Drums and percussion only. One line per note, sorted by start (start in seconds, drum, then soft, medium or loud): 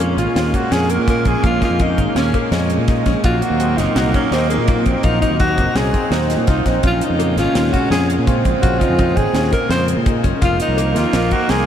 0.00 closed hi-hat medium
0.18 closed hi-hat medium
0.36 snare loud
0.36 closed hi-hat medium
0.54 kick medium
0.54 closed hi-hat medium
0.72 snare medium
0.72 closed hi-hat medium
0.90 closed hi-hat medium
1.08 kick medium
1.08 snare soft
1.08 closed hi-hat medium
1.25 kick medium
1.25 closed hi-hat medium
1.44 kick loud
1.44 closed hi-hat medium
1.62 kick medium
1.62 snare soft
1.62 closed hi-hat medium
1.79 kick medium
1.79 closed hi-hat medium
1.98 kick medium
1.98 closed hi-hat medium
2.16 snare loud
2.16 closed hi-hat medium
2.34 kick medium
2.34 closed hi-hat medium
2.52 snare medium
2.52 closed hi-hat medium
2.70 closed hi-hat medium
2.88 kick loud
2.88 snare soft
2.88 closed hi-hat medium
3.06 kick medium
3.06 snare soft
3.06 closed hi-hat medium
3.24 kick loud
3.24 closed hi-hat medium
3.42 closed hi-hat medium
3.60 closed hi-hat medium
3.78 snare soft
3.78 closed hi-hat medium
3.96 snare loud
3.96 closed hi-hat medium
4.14 kick medium
4.14 closed hi-hat medium
4.32 snare medium
4.32 closed hi-hat medium
4.50 closed hi-hat medium
4.68 kick loud
4.68 closed hi-hat medium
4.86 kick medium
4.86 closed hi-hat medium
5.03 kick loud
5.03 closed hi-hat medium
5.22 kick medium
5.22 closed hi-hat medium
5.40 kick loud
5.40 snare soft
5.40 closed hi-hat medium
5.58 kick medium
5.58 closed hi-hat medium
5.76 snare loud
5.76 closed hi-hat medium
5.94 kick medium
5.94 closed hi-hat soft
6.12 snare medium
6.12 closed hi-hat medium
6.30 snare soft
6.30 closed hi-hat medium
6.47 kick loud
6.47 snare soft
6.47 closed hi-hat medium
6.66 kick medium
6.66 snare soft
6.66 closed hi-hat medium
6.83 kick loud
6.83 closed hi-hat medium
7.01 closed hi-hat medium
7.20 closed hi-hat medium
7.38 snare soft
7.38 closed hi-hat medium
7.55 snare loud
7.55 closed hi-hat medium
7.74 kick medium
7.74 closed hi-hat medium
7.92 snare loud
7.92 closed hi-hat medium
8.10 closed hi-hat medium
8.27 kick loud
8.27 closed hi-hat medium
8.45 kick medium
8.45 closed hi-hat medium
8.63 kick loud
8.63 closed hi-hat medium
8.81 kick medium
8.81 closed hi-hat medium
8.99 kick loud
8.99 closed hi-hat medium
9.17 kick medium
9.17 closed hi-hat medium
9.35 snare loud
9.35 closed hi-hat medium
9.53 kick medium
9.53 closed hi-hat medium
9.71 snare medium
9.71 closed hi-hat medium
9.88 closed hi-hat medium
10.06 kick loud
10.06 closed hi-hat medium
10.24 kick medium
10.24 closed hi-hat medium
10.42 kick loud
10.42 closed hi-hat medium
10.60 closed hi-hat medium
10.78 closed hi-hat medium
10.96 snare soft
10.96 closed hi-hat medium
11.13 snare loud
11.13 closed hi-hat medium
11.31 kick medium
11.31 closed hi-hat medium
11.49 snare loud
11.49 closed hi-hat medium